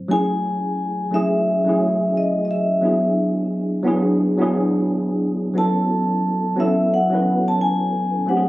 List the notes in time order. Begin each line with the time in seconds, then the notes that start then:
0.08 F#3 A3 C#4 E4 G#5
0.13 G#4
1.11 F#3 A3 C#4 E4 E5
1.15 G#4
1.65 F#3 A3 C#4 E4
1.69 G#4
2.17 D#5
2.45 D#5
2.51 E5
2.81 F#3 B3 D4 E4
2.85 G#4
3.83 F#3 B3 D4 E4
3.88 G#4
4.37 F#3 B3 D4 E4
4.42 G#4
5.54 F#3 B3 C#4 E4
5.58 A4 A5
6.56 F#3 B3 C#4 E4
6.60 A4 E5
6.94 F#5
7.10 F#3 B3 C#4 E4
7.14 B4
7.48 A5
7.61 G#5
8.26 F#3 A3 C4 D4 F#5
8.30 G4
8.37 G#4